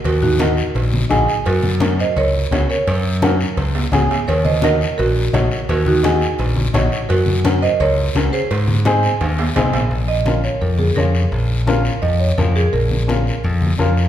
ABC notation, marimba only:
X:1
M:4/4
L:1/8
Q:1/4=170
K:Bbm
V:1 name="Marimba"
[GB] [EG]2 z4 z | [GB]3 [ce] [Bd]3 [Bd]- | [Bd]3 z4 z | [Bd] [ce] [Be]2 [GB]4 |
[GB] [EG]2 z4 z | [GB]3 [ce] [Bd]3 [Ac]- | [Ac]3 z4 z | z e2 d B A B2- |
B2 z2 e d B A | B6 z2 |]